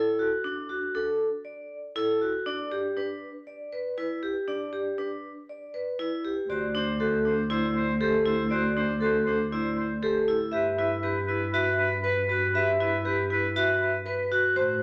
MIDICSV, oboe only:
0, 0, Header, 1, 2, 480
1, 0, Start_track
1, 0, Tempo, 504202
1, 423, Time_signature, 4, 2, 24, 8
1, 14115, End_track
2, 0, Start_track
2, 0, Title_t, "Oboe"
2, 0, Program_c, 0, 68
2, 6182, Note_on_c, 0, 72, 34
2, 6350, Note_off_c, 0, 72, 0
2, 6428, Note_on_c, 0, 72, 43
2, 6594, Note_off_c, 0, 72, 0
2, 6662, Note_on_c, 0, 72, 49
2, 6830, Note_off_c, 0, 72, 0
2, 6908, Note_on_c, 0, 72, 54
2, 7074, Note_off_c, 0, 72, 0
2, 7142, Note_on_c, 0, 72, 59
2, 7310, Note_off_c, 0, 72, 0
2, 7387, Note_on_c, 0, 72, 60
2, 7554, Note_off_c, 0, 72, 0
2, 7621, Note_on_c, 0, 72, 62
2, 7790, Note_off_c, 0, 72, 0
2, 7863, Note_on_c, 0, 72, 61
2, 8031, Note_off_c, 0, 72, 0
2, 8101, Note_on_c, 0, 72, 74
2, 8269, Note_off_c, 0, 72, 0
2, 8342, Note_on_c, 0, 72, 71
2, 8510, Note_off_c, 0, 72, 0
2, 8581, Note_on_c, 0, 72, 63
2, 8750, Note_off_c, 0, 72, 0
2, 8815, Note_on_c, 0, 72, 60
2, 8986, Note_off_c, 0, 72, 0
2, 9062, Note_on_c, 0, 72, 51
2, 9230, Note_off_c, 0, 72, 0
2, 9301, Note_on_c, 0, 72, 41
2, 9470, Note_off_c, 0, 72, 0
2, 9539, Note_on_c, 0, 72, 32
2, 9708, Note_off_c, 0, 72, 0
2, 10021, Note_on_c, 0, 71, 35
2, 10190, Note_off_c, 0, 71, 0
2, 10253, Note_on_c, 0, 71, 42
2, 10424, Note_off_c, 0, 71, 0
2, 10487, Note_on_c, 0, 71, 51
2, 10661, Note_off_c, 0, 71, 0
2, 10725, Note_on_c, 0, 71, 53
2, 10899, Note_off_c, 0, 71, 0
2, 10974, Note_on_c, 0, 71, 68
2, 11145, Note_off_c, 0, 71, 0
2, 11216, Note_on_c, 0, 71, 64
2, 11386, Note_off_c, 0, 71, 0
2, 11450, Note_on_c, 0, 71, 64
2, 11622, Note_off_c, 0, 71, 0
2, 11697, Note_on_c, 0, 71, 60
2, 11867, Note_off_c, 0, 71, 0
2, 11941, Note_on_c, 0, 71, 70
2, 12110, Note_off_c, 0, 71, 0
2, 12184, Note_on_c, 0, 71, 75
2, 12352, Note_off_c, 0, 71, 0
2, 12427, Note_on_c, 0, 71, 68
2, 12594, Note_off_c, 0, 71, 0
2, 12670, Note_on_c, 0, 71, 61
2, 12836, Note_off_c, 0, 71, 0
2, 12907, Note_on_c, 0, 71, 55
2, 13074, Note_off_c, 0, 71, 0
2, 13150, Note_on_c, 0, 71, 45
2, 13316, Note_off_c, 0, 71, 0
2, 13393, Note_on_c, 0, 71, 35
2, 13558, Note_off_c, 0, 71, 0
2, 13863, Note_on_c, 0, 72, 40
2, 14031, Note_off_c, 0, 72, 0
2, 14115, End_track
0, 0, End_of_file